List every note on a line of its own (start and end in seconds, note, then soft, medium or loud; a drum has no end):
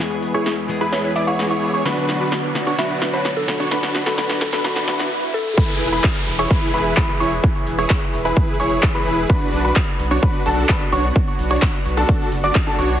0.00 1.82 E2 medium
0.00 0.66 E3 medium
0.00 1.82 E3 medium
0.00 0.66 G#3 medium
0.00 0.67 B3 medium
0.00 1.82 G#4 medium
0.00 0.67 G#4 medium
0.00 5.07 B4 medium
0.00 riser medium
0.11 closed hi-hat soft
0.23 open hi-hat loud
0.34 0.55 E4 medium
0.34 0.42 G#4 medium
0.34 0.55 G#4 medium
0.34 0.55 C#5 medium
0.34 0.54 C#6 medium
0.34 closed hi-hat soft
0.46 0.53 G#4 medium
0.46 snare medium
0.46 closed hi-hat medium
0.58 closed hi-hat soft
0.68 1.82 E3 medium
0.68 1.83 G#3 medium
0.68 1.83 B3 medium
0.68 1.83 G#4 loud
0.68 open hi-hat medium
0.81 1.13 E4 medium
0.81 1.13 G#4 medium
0.81 1.13 B4 loud
0.81 1.13 B5 loud
0.81 closed hi-hat soft
0.92 1.00 C#5 medium
0.92 snare medium
0.92 closed hi-hat medium
1.04 1.12 C#5 medium
1.04 closed hi-hat soft
1.16 1.25 E4 medium
1.16 1.25 G#4 medium
1.16 1.25 D5 loud
1.16 1.25 E5 medium
1.16 1.25 D6 medium
1.16 open hi-hat loud
1.27 1.48 E4 medium
1.27 1.48 G#4 medium
1.27 1.48 C#5 loud
1.27 1.62 F#5 medium
1.27 1.48 C#6 medium
1.27 closed hi-hat soft
1.39 snare medium
1.39 closed hi-hat medium
1.50 1.71 E4 medium
1.50 1.71 G#4 medium
1.50 1.71 C#5 medium
1.50 1.71 C#6 medium
1.50 closed hi-hat soft
1.62 open hi-hat medium
1.74 1.84 E4 medium
1.74 1.84 G#4 medium
1.74 1.84 C#5 medium
1.74 1.84 C#6 medium
1.74 closed hi-hat soft
1.84 5.08 B2 medium
1.84 2.52 D3 medium
1.84 2.52 F#3 medium
1.84 5.08 F#3 medium
1.84 2.53 B3 medium
1.84 5.08 D4 medium
1.84 2.18 D4 medium
1.84 2.18 F#4 medium
1.84 2.53 F#4 medium
1.84 2.18 B4 medium
1.84 2.18 B5 medium
1.84 snare medium
1.84 closed hi-hat medium
1.97 closed hi-hat soft
2.09 snare medium
2.09 open hi-hat loud
2.20 2.33 D4 medium
2.20 2.33 F#4 medium
2.20 2.33 B4 medium
2.20 2.33 B5 medium
2.20 closed hi-hat soft
2.32 snare medium
2.32 closed hi-hat medium
2.44 closed hi-hat soft
2.54 2.76 D3 medium
2.54 2.76 F#3 medium
2.54 2.77 B3 medium
2.54 2.77 F#4 medium
2.54 snare medium
2.54 open hi-hat loud
2.67 2.76 D4 medium
2.67 2.76 F#4 medium
2.67 2.76 C#5 medium
2.67 2.76 C#6 medium
2.67 closed hi-hat soft
2.77 3.45 D3 medium
2.77 3.45 F#3 medium
2.77 3.46 B3 medium
2.77 3.11 D4 medium
2.77 3.11 F#4 medium
2.77 3.46 F#4 medium
2.77 3.11 B4 medium
2.77 2.94 E5 medium
2.77 3.11 B5 medium
2.77 snare medium
2.77 closed hi-hat medium
2.90 closed hi-hat soft
3.02 snare medium
3.02 open hi-hat loud
3.13 3.26 D4 medium
3.13 3.26 F#4 medium
3.13 3.26 B4 medium
3.13 3.29 C#5 medium
3.13 3.26 B5 medium
3.13 closed hi-hat soft
3.25 snare medium
3.25 closed hi-hat medium
3.37 3.52 A4 medium
3.37 closed hi-hat soft
3.47 3.69 D3 medium
3.47 3.69 F#3 medium
3.47 3.70 B3 medium
3.47 3.70 F#4 loud
3.47 snare medium
3.47 open hi-hat medium
3.60 3.69 D4 medium
3.60 3.69 F#4 medium
3.60 3.69 C#5 medium
3.60 3.69 C#6 medium
3.60 closed hi-hat soft
3.70 4.16 D3 medium
3.70 4.16 F#3 medium
3.70 4.16 B3 medium
3.70 4.04 D4 medium
3.70 4.04 F#4 medium
3.70 4.17 F#4 medium
3.70 4.04 B4 loud
3.70 4.04 B5 loud
3.70 snare loud
3.70 closed hi-hat medium
3.83 snare medium
3.83 closed hi-hat soft
3.95 snare medium
3.95 open hi-hat loud
4.06 4.16 D4 medium
4.06 4.16 F#4 medium
4.06 4.22 A4 medium
4.06 4.16 B4 medium
4.06 4.16 B5 medium
4.06 snare medium
4.06 closed hi-hat soft
4.17 4.62 D3 medium
4.17 4.62 F#3 medium
4.17 4.63 B3 medium
4.17 4.50 D4 medium
4.17 4.50 F#4 medium
4.17 4.63 F#4 medium
4.17 4.50 B4 medium
4.17 4.50 B5 loud
4.17 snare loud
4.17 closed hi-hat medium
4.29 snare medium
4.29 closed hi-hat soft
4.41 4.49 A4 medium
4.41 snare loud
4.41 open hi-hat loud
4.53 4.63 D4 medium
4.53 4.63 F#4 medium
4.53 4.60 A4 medium
4.53 4.63 B4 loud
4.53 4.63 B5 loud
4.53 snare medium
4.53 closed hi-hat soft
4.63 4.85 D3 medium
4.63 4.86 F#3 medium
4.63 4.86 B3 medium
4.63 4.86 D4 medium
4.63 4.86 F#4 medium
4.63 4.86 B4 loud
4.63 4.86 B5 loud
4.63 snare loud
4.63 closed hi-hat medium
4.63 swell medium
4.76 snare medium
4.76 closed hi-hat soft
4.86 5.09 D3 medium
4.86 5.09 F#3 medium
4.86 5.09 B3 medium
4.86 5.09 D4 medium
4.86 5.09 F#4 medium
4.86 5.10 F#4 loud
4.86 5.09 B4 loud
4.86 5.09 B5 loud
4.86 snare loud
4.86 open hi-hat loud
4.99 snare medium
4.99 closed hi-hat soft
5.34 5.57 A4 medium
5.58 9.26 E3 medium
5.58 5.90 E4 medium
5.58 9.26 E4 medium
5.58 5.90 G#4 medium
5.58 9.26 G#4 medium
5.58 5.90 B4 loud
5.58 9.26 B4 medium
5.58 5.90 B5 loud
5.58 kick loud
5.58 closed hi-hat medium
5.58 crash loud
5.58 downlifter medium
5.69 closed hi-hat soft
5.81 5.99 E1 loud
5.81 open hi-hat loud
5.92 6.05 E4 medium
5.92 6.05 G#4 medium
5.92 6.05 B4 loud
5.92 6.05 B5 medium
5.92 closed hi-hat soft
6.04 kick loud
6.04 clap loud
6.04 closed hi-hat medium
6.16 closed hi-hat soft
6.27 6.46 E1 loud
6.27 open hi-hat loud
6.39 6.48 E4 medium
6.39 6.48 G#4 medium
6.39 6.48 C#5 medium
6.39 6.48 C#6 medium
6.39 closed hi-hat soft
6.51 6.71 E4 medium
6.51 6.71 G#4 medium
6.51 6.71 B4 loud
6.51 6.71 B5 medium
6.51 kick loud
6.51 closed hi-hat medium
6.62 closed hi-hat soft
6.74 6.92 E1 loud
6.74 6.94 E4 loud
6.74 6.94 G#4 medium
6.74 6.94 B4 loud
6.74 6.94 B5 loud
6.74 open hi-hat loud
6.85 closed hi-hat soft
6.97 7.10 E4 loud
6.97 7.10 B5 loud
6.97 kick loud
6.97 clap loud
6.97 closed hi-hat medium
7.09 closed hi-hat soft
7.20 7.39 E1 medium
7.20 7.33 E4 medium
7.20 7.33 G#4 medium
7.20 7.33 C#5 loud
7.20 7.33 C#6 loud
7.20 open hi-hat medium
7.32 closed hi-hat soft
7.44 kick loud
7.44 closed hi-hat medium
7.55 closed hi-hat soft
7.67 7.85 E1 loud
7.67 open hi-hat loud
7.78 7.99 E4 medium
7.78 7.99 G#4 medium
7.78 7.99 C#5 medium
7.78 7.99 C#6 medium
7.78 closed hi-hat soft
7.90 kick loud
7.90 clap loud
7.90 closed hi-hat medium
8.02 closed hi-hat soft
8.13 8.32 E1 loud
8.13 open hi-hat loud
8.25 8.57 E4 medium
8.25 8.57 G#4 medium
8.25 8.57 B4 loud
8.25 8.57 B5 loud
8.25 closed hi-hat soft
8.37 kick loud
8.37 closed hi-hat medium
8.48 closed hi-hat soft
8.60 8.78 E1 loud
8.60 8.92 E4 medium
8.60 8.92 G#4 medium
8.60 8.92 C#5 medium
8.60 8.92 C#6 medium
8.60 open hi-hat loud
8.71 closed hi-hat soft
8.83 kick loud
8.83 clap loud
8.83 closed hi-hat medium
8.95 9.27 E4 loud
8.95 9.27 G#4 medium
8.95 9.27 B4 loud
8.95 9.27 B5 loud
8.95 closed hi-hat soft
9.06 9.25 E1 medium
9.06 open hi-hat medium
9.18 closed hi-hat soft
9.30 12.98 B3 medium
9.30 12.98 D4 medium
9.30 9.62 D4 medium
9.30 12.98 F#4 medium
9.30 9.62 F#4 medium
9.30 9.62 B4 loud
9.30 9.62 B5 loud
9.30 kick loud
9.30 closed hi-hat medium
9.41 closed hi-hat soft
9.53 9.71 B1 loud
9.53 open hi-hat loud
9.64 9.77 D4 medium
9.64 9.77 F#4 medium
9.64 9.77 B4 loud
9.64 9.77 B5 loud
9.64 closed hi-hat soft
9.76 kick loud
9.76 clap loud
9.76 closed hi-hat medium
9.88 closed hi-hat soft
9.99 10.18 B1 loud
9.99 open hi-hat loud
10.11 10.20 D4 medium
10.11 10.20 F#4 medium
10.11 10.20 C#5 medium
10.11 10.20 C#6 medium
10.11 closed hi-hat soft
10.23 10.43 D4 medium
10.23 10.43 F#4 medium
10.23 10.43 B4 loud
10.23 10.43 B5 loud
10.23 kick loud
10.23 closed hi-hat medium
10.34 closed hi-hat soft
10.46 10.64 B1 loud
10.46 10.66 D4 loud
10.46 10.66 F#4 medium
10.46 10.66 A4 loud
10.46 10.66 A5 loud
10.46 open hi-hat loud
10.58 closed hi-hat soft
10.69 10.82 B5 loud
10.69 kick loud
10.69 clap loud
10.69 closed hi-hat medium
10.81 closed hi-hat soft
10.92 11.11 B1 medium
10.92 11.05 D4 loud
10.92 11.05 F#4 medium
10.92 11.05 C#5 loud
10.92 11.05 C#6 loud
10.92 open hi-hat loud
11.04 closed hi-hat soft
11.16 kick loud
11.16 closed hi-hat medium
11.27 closed hi-hat soft
11.39 11.58 B1 loud
11.39 open hi-hat loud
11.51 11.71 D4 medium
11.51 11.71 F#4 medium
11.51 11.71 C#5 medium
11.51 11.71 C#6 medium
11.51 closed hi-hat soft
11.62 kick loud
11.62 clap loud
11.62 closed hi-hat medium
11.74 closed hi-hat soft
11.85 12.04 B1 loud
11.85 open hi-hat loud
11.97 12.29 D4 medium
11.97 12.29 F#4 medium
11.97 12.29 A4 loud
11.97 12.29 A5 loud
12.09 kick loud
12.09 closed hi-hat medium
12.21 closed hi-hat soft
12.32 12.51 F#1 medium
12.32 open hi-hat loud
12.44 12.56 D4 medium
12.44 12.56 F#4 medium
12.44 12.56 D5 loud
12.44 12.56 D6 loud
12.44 closed hi-hat soft
12.55 kick loud
12.55 clap loud
12.55 closed hi-hat medium
12.67 12.77 D4 loud
12.67 12.77 F#4 medium
12.67 12.77 A4 loud
12.67 12.77 A5 loud
12.67 closed hi-hat soft
12.79 12.97 B1 loud
12.79 12.99 D4 medium
12.79 12.99 F#4 medium
12.79 12.99 C#5 medium
12.79 12.99 C#6 medium
12.79 open hi-hat loud
12.90 closed hi-hat soft